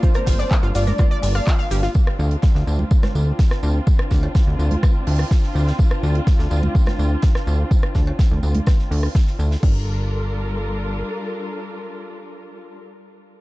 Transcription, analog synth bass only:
\new Staff \with { instrumentName = "Analog synth bass" } { \clef bass \time 4/4 \key g \minor \tempo 4 = 125 r8 g,,16 r8 g,,16 g,,16 r8. g,,16 r8. g,,16 r16 | r8 d,16 r8 d,16 d,16 r8. d,16 r8. d,16 r16 | r8 d,16 r8 d,16 d,16 r8. d,16 r8. d,16 r16 | r8 d,16 r8 d,16 d,16 r8. d,16 r8. d,16 r16 |
r8 d,16 r8 d,16 d,16 r8. d,16 r8. d,16 r16 | g,,2. r4 | r1 | }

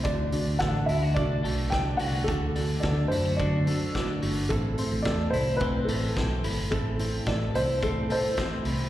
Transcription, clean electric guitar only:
\new Staff \with { instrumentName = "Clean electric guitar" } { \time 4/4 \key a \dorian \tempo 4 = 108 d8 d'8 a'8 e'16 fis'16 d'8 a'8 d'8 fis'8 | d8 d'8 a'8 e'16 fis'16 d'8 a'8 d'8 fis'8 | a,8 c'8 a'8 e'8 c'8 a'8 c'8 e'8 | a,8 c'8 a'8 e'8 c'8 a'8 c'8 e'8 | }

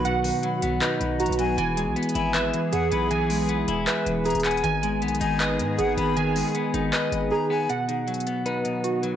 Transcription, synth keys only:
\new Staff \with { instrumentName = "Synth keys" } { \time 4/4 \key b \major \tempo 4 = 157 <fis' b' fis''>2 b'4 fis'4 | gis''2 b'4 gis'4 | gis''2 b'4 gis'4 | gis''2 b'4 gis'4 |
gis''2 b'4 gis'4 | fis''2 b'4 fis'4 | }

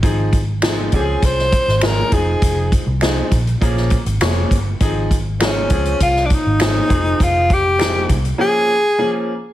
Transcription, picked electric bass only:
\new Staff \with { instrumentName = "Picked electric bass" } { \clef bass \time 4/4 \key f \minor \tempo 4 = 100 aes,,4. des,8 c,8. aes,,8. f,,8 | f,,8. c,8. bes,,8 bes,,8. aes,,16 f,,8 g,,8 | aes,,4. des,8 c,8. aes,,8. f,,8 | f,,4. c,8 r2 | }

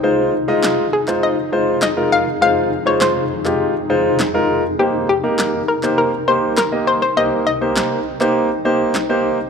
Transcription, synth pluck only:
\new Staff \with { instrumentName = "Synth pluck" } { \time 4/4 \key f \minor \tempo 4 = 101 r4. aes'8 ees''4 ees''8 f''8 | f''8. des''16 c''2 r4 | g'8 g'4 bes'8 bes'8 c''8 bes'8 c''16 c''16 | ees''8 ees''4. r2 | }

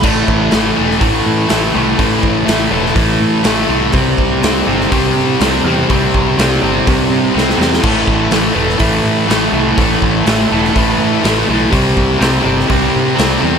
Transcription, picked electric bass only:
\new Staff \with { instrumentName = "Picked electric bass" } { \clef bass \time 4/4 \key a \minor \tempo 4 = 123 a,,8 a,,8 a,,8 e,,8 a,,8 a,8 a,,8 c,8 | a,,8 a,,8 a,,8 e,,8 a,,8 a,8 a,,8 c,8 | c,8 c,8 c,8 g,,8 c,8 c8 c,8 e,8 | c,8 c,8 c,8 g,,8 c,8 c8 c,8 e,8 |
a,,8 a,,8 a,,8 e,,8 a,,8 a,8 a,,8 c,8 | a,,8 a,,8 a,,8 e,,8 a,,8 a,8 a,,8 b,,8 | c,8 c,8 c,8 g,,8 c,8 c8 c,8 e,8 | }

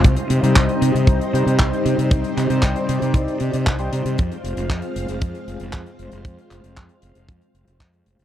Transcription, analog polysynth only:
\new Staff \with { instrumentName = "Analog polysynth" } { \time 4/4 \key c \minor \tempo 4 = 116 r8. <g c' ees' c''>4.~ <g c' ees' c''>16 <g c' ees' c''>4.~ | <g c' ees' c''>8. <g c' ees' c''>4.~ <g c' ees' c''>16 r8. <g c' ees' c''>8. | r1 | r1 | }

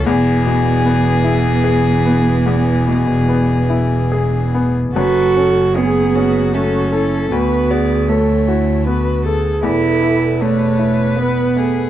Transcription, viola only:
\new Staff \with { instrumentName = "Viola" } { \time 3/4 \key fis \minor \tempo 4 = 77 b2.~ | b2~ b8. r16 | b'8 a'8 gis'4 fis'8 e'8 | fis'8 gis'8 a'8 e'8 fis'8 gis'8 |
a'4 b'2 | }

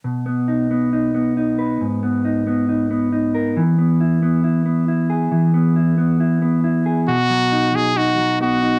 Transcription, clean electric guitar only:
\new Staff \with { instrumentName = "Clean electric guitar" } { \time 4/4 \key b \major \tempo 4 = 136 b,8 b8 dis'8 b8 dis'8 b8 dis'8 b'8 | gis,8 b8 dis'8 b8 dis'8 b8 dis'8 ais'8 | e8 b8 e'8 b8 e'8 b8 e'8 gis'8 | e8 b8 e'8 b8 e'8 b8 e'8 gis'8 |
b,8 fis8 dis'8 fis8 dis'8 fis8 b8 dis'8 | }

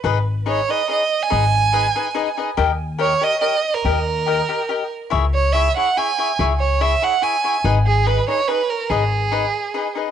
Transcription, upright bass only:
\new Staff \with { instrumentName = "Upright bass" } { \clef bass \time 3/4 \key gis \minor \tempo 4 = 142 gis,,2 r4 | gis,,2 r4 | dis,2 r4 | dis,2 r4 |
cis,2 r4 | cis,2 r4 | gis,,2 r4 | gis,,2 r4 | }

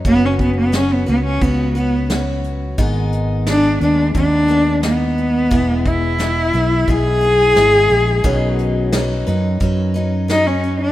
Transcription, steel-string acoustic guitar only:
\new Staff \with { instrumentName = "Steel-string acoustic guitar" } { \time 4/4 \key b \major \tempo 4 = 88 <fis cis' fis' b'>4 <fis cis' fis' b'>8 <cis' fis' b'>8 <fis cis' fis' b'>8 <cis' fis' b'>8 <fis cis' fis' b'>4 | <gis, dis gis b dis' gis'>4 <gis b gis'>8 <gis b gis'>8 <gis b gis'>8 <gis b gis'>8 <gis b dis' gis'>4 | <e gis b e' gis'>4 <gis b e' gis'>8 <b e' gis'>8 <gis b e' gis'>8 <b e' gis'>8 <gis b e' gis'>4 | <b, dis fis cis' dis' b'>4 <fis cis' dis' b'>8 <fis cis' dis' b'>8 <fis cis' dis' b'>8 <fis cis' dis' b'>8 <fis cis' dis' b'>4 | }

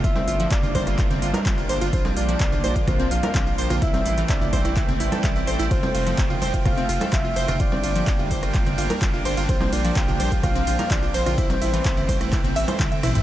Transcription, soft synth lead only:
\new Staff \with { instrumentName = "Soft synth lead" } { \time 4/4 \key g \dorian \tempo 4 = 127 e''4 d''4 r2 | c''8 d''4. c''8 f''4 r8 | e''4 d''4 r2 | c''4. r8 f''4 e''4 |
d''2 r2 | c''8 d''8 g''4 f''4 d''8 c''8~ | c''2. r4 | }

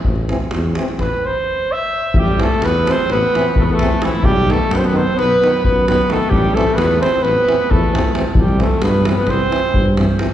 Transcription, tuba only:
\new Staff \with { instrumentName = "Tuba" } { \clef bass \time 9/8 \tempo 4. = 87 a,,4 e,4 a,,16 r2 r16 | a,,4 e,4 a,,8 r8 e,4. | b,,4 fis,4 b,,8 r8 fis,4. | a,,4 e,4 a,,8 r8 e,4. |
c,4 g,4 c,8 r8 g,4. | }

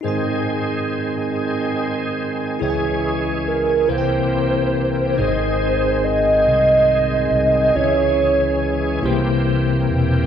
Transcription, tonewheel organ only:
<<
  \new Staff \with { instrumentName = "Tonewheel organ" } { \time 6/8 \key aes \major \tempo 4. = 47 << { aes'2. | aes'4. g'4. | aes'2.~ | aes'4. g'4. | } \\ { c'2. | des'4. c'4. | c'2. | des'4. c'4. | } >> }
  \new Staff \with { instrumentName = "Tonewheel organ" } { \clef bass \time 6/8 \key aes \major << { aes2.~ | aes4. bes4. | aes2.~ | aes4. bes4. | } \\ { ees2. | fes2. | ees2. | fes2. | } >> }
>>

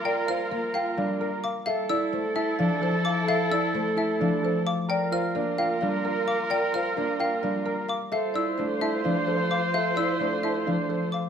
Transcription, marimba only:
\new Staff \with { instrumentName = "Marimba" } { \time 7/8 \key g \dorian \tempo 4 = 130 d''8 c''8 bes'8 g''8 f''8 bes'8 f''8 | e''8 d''8 c''8 a''8 f''8 c''8 f''8 | e''8 d''8 c''8 a''8 f''8 c''8 f''8 | d''8 c''8 bes'8 g''8 f''8 bes'8 f''8 |
d''8 c''8 bes'8 g''8 f''8 bes'8 f''8 | e''8 d''8 c''8 a''8 f''8 c''8 f''8 | e''8 d''8 c''8 a''8 f''8 c''8 f''8 | }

